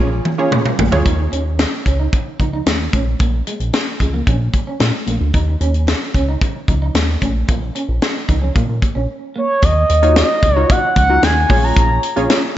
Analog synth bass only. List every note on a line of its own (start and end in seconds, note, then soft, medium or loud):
0.00 0.21 A#1 loud
0.52 0.63 A#2 medium
0.79 0.90 A#1 medium
0.92 1.03 D2 medium
1.06 1.28 D#2 loud
1.32 1.66 D#2 loud
1.86 2.08 C#2 medium
2.40 2.62 C#2 medium
2.67 2.89 D#2 medium
2.93 3.15 A#1 medium
3.20 3.42 A#1 loud
3.60 3.71 A#1 medium
4.00 4.22 C#2 medium
4.27 4.49 A#1 loud
4.80 4.92 A#2 medium
5.08 5.19 A#1 medium
5.21 5.32 D2 medium
5.34 5.56 D#2 loud
5.61 5.94 D#2 loud
6.14 6.37 C#2 medium
6.68 6.90 C#2 medium
6.95 7.17 D#2 medium
7.22 7.44 A#1 loud
7.49 7.71 A#1 loud
7.89 8.00 A#1 loud
8.29 8.51 C#2 medium
8.56 8.67 A#2 loud
8.69 8.80 A#2 medium
8.96 9.07 A#1 medium
9.63 9.85 D#2 loud
9.90 10.23 D#2 loud
10.43 10.65 C#2 medium
10.96 11.19 C#2 medium
11.23 11.45 D#2 medium
11.50 11.72 A#1 loud
11.77 11.99 A#1 loud
12.17 12.28 A#1 medium